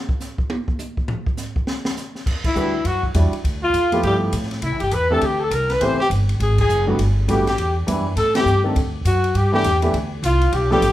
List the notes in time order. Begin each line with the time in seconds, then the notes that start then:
0.09 kick
0.20 snare, hi-hat pedal
0.38 kick
0.50 high tom
0.68 kick
0.79 hi-hat pedal, high tom
0.97 kick
1.08 floor tom
1.26 kick
1.37 snare, hi-hat pedal
1.56 kick
1.67 snare
1.85 snare
1.97 snare, hi-hat pedal
2.15 snare
2.26 E2, kick, crash
2.44 E4, kick, crash
2.55 D2 G3 D4 E4 F#4 B4, hi-hat pedal
2.85 F#2 F#4, kick, ride
3.03 kick
3.14 E2 G3 D4 E4 F#4 D5, hi-hat pedal, ride
3.33 ride
3.44 D2, kick, ride
3.63 F4
3.73 F2, kick, hi-hat pedal, ride
3.92 F3 A3 B3 E4 G4, ride
4.03 G2 G4, kick, ride
4.33 A2, kick, hi-hat pedal, ride
4.43 snare
4.51 snare, ride
4.62 C2 E4, kick, ride
4.72 A1
4.80 G1 G4, ride
4.91 E2 B4, kick, hi-hat pedal, ride
5.10 E3 A3 C4 D4 G4 A4
5.21 D2 G4, kick, ride
5.26 G4
5.40 A4
5.50 C2 A#4, kick, hi-hat pedal, ride
5.56 A#4
5.70 B4, snare, ride
5.81 A1 E3 A3 B3 C4 G4 C5, kick, ride
5.85 C5
5.99 G4, muted upright bass stroke
6.10 G1, kick, hi-hat pedal, ride
6.29 ride
6.40 G#1 G#4, kick, ride
6.58 G#4, kick, crash
6.69 F#1, hi-hat pedal
6.87 D3 G3 A3 B3 F#4
6.99 G1, kick, ride
7.28 A1 D3 G3 A3 B3 F#4 G4, kick, hi-hat pedal, ride
7.32 G4
7.47 G4, snare, ride
7.58 E2, kick, ride
7.87 F#2 E3 G3 B3 D4 E4, kick, hi-hat pedal, ride
8.16 A2 A4, kick, snare, ride
8.35 E3 A3 B3 C4 G4, snare, ride
8.45 G2, hi-hat pedal
8.64 D#3 A3 C4 D4 A4
8.75 D2, kick, ride
9.05 F#2 F#4, kick, hi-hat pedal, ride
9.24 ride
9.34 G2 G4, kick, ride
9.52 E3 A3 B3 D4 G4
9.64 E2, kick, hi-hat pedal, ride
9.82 E3 A3 B3 D4 G4, ride
9.93 D2, kick, ride
10.23 C2 F4, kick, hi-hat pedal, ride
10.41 ride
10.52 B1 G4, kick, ride
10.70 F3 A3 B3 D4 G4 A4, snare
10.82 A1, kick, hi-hat pedal, ride